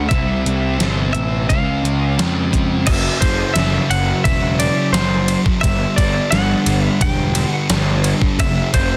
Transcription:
0.08 C2 C3 G3 C4 E5, kick, closed hi-hat
0.46 C2, closed hi-hat
0.78 G1 C3 G3 C4, snare, closed hi-hat
1.13 A1 E5, closed hi-hat
1.49 C#2 C#3 G#3 C#4 F5, kick, closed hi-hat
1.83 C#2, closed hi-hat
2.17 F2 C#3 G#3 C#4, snare, closed hi-hat
2.53 kick, closed hi-hat
2.86 F#1 F#2 C#3 F#3 E5, kick, crash, ride
3.21 F#1 C#3 F#3 C5, kick, ride
3.54 F#1 F#2 C#3 E5, snare, ride
3.59 F#3
3.90 F#1 F#5, ride
4.24 E1 F#2 C#3 F#3 E5, kick, ride
4.59 D5, ride
4.93 F#1 F#2 C#3 C5, snare, ride
4.97 F#3
5.28 ride
5.46 kick
5.61 G1 G2 D3 E5, kick, ride
5.66 G3
5.96 G1 G3 D5, kick, ride
6.02 D3
6.31 G1 G2 D3 F#5, snare, ride
6.35 G3
6.66 G1, ride
6.85 E5
7.01 E1 G2 D3 G3 G5, kick, ride
7.35 ride
7.48 F#5
7.70 G1 G2 D3 G3, snare, ride
8.04 ride
8.22 kick
8.38 F#1 F#2 C#3 F#3 E5, kick, ride
8.73 F#1 C#3 F#3 C5, kick, ride

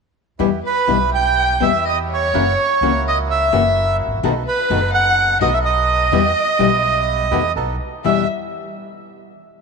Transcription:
0.39 E2 B2 E3 G3 B3 E4 G4
0.63 B4
0.87 B1 B2 E3 G3 B3 E4 G4
1.14 G5
1.60 E2 B2 E3 G3 B3 E4 G4 E5
1.85 D#5
2.10 C#5
2.14 C#5
2.33 F#1 C#3 E3 A#3 C#4 E4 F#4
2.81 C#2 C#3 E3 A#3 C#4 E4 F#4
3.08 D#5
3.31 E5
3.52 F#1 C#3 E3 A#3 C#4 E4 F#4
4.06 G#1
4.12 A1
4.17 A#1
4.23 B1 B2 D#3 A3 B3 D#4 F#4 A4
4.45 B4
4.70 F#1 B2 D#3 A3 B3 D#4 F#4 A4
4.92 F#5
5.41 B1 B2 D#3 A3 B3 D#4 F#4 A4 D#5
5.53 E5
5.65 D#5
6.12 E2 B2 E3 G3 B3 E4 G4
6.59 B1 B2 E3 G3 B3 E4 G4
7.30 E2 B2 D#3 A3 B3 E4 F#4 G4
7.55 B1 B3 D#4 A4
8.04 E2 B2 E3 G3 B3 E4 G4 E5

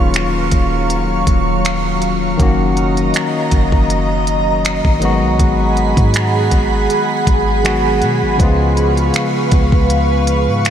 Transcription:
Already playing: D#1 D#3 F#3 A#3 C#4 F4 F5 C#6
0.14 finger snap, closed hi-hat
0.52 D#1, kick, closed hi-hat
0.90 closed hi-hat
1.27 D#1, kick, closed hi-hat
1.65 finger snap, closed hi-hat
2.02 closed hi-hat
2.37 F#1 D#3 F#3 A#3 D#5 A#5, kick, closed hi-hat
2.41 C#4 F#4
2.77 closed hi-hat
2.97 closed hi-hat
3.14 finger snap, closed hi-hat
3.51 F#1, kick, closed hi-hat
3.72 F#1, kick
3.90 closed hi-hat
4.27 closed hi-hat
4.65 finger snap, closed hi-hat
4.85 G#1, kick
5.00 D#3 F#3 G#3 G#4 F#5 B5, closed hi-hat
5.04 B3 F#4
5.23 B1
5.39 G#1, kick, closed hi-hat
5.77 closed hi-hat
5.97 G#2, kick, closed hi-hat
6.14 finger snap, closed hi-hat
6.51 G#1, kick, closed hi-hat
6.90 closed hi-hat
7.27 G#1, kick, closed hi-hat
7.63 D#3 F#3 G#3 B3 F#4, finger snap, closed hi-hat
8.02 B2, closed hi-hat
8.23 G#1
8.37 C#2 C#3 F3 G#3 B4 F5 C#6, kick, closed hi-hat
8.41 B3 F4
8.77 closed hi-hat
8.97 closed hi-hat
9.14 finger snap, closed hi-hat
9.51 C#2, kick, closed hi-hat
9.72 C#2, kick
9.90 closed hi-hat
10.27 closed hi-hat
10.48 G#2
10.65 finger snap, closed hi-hat

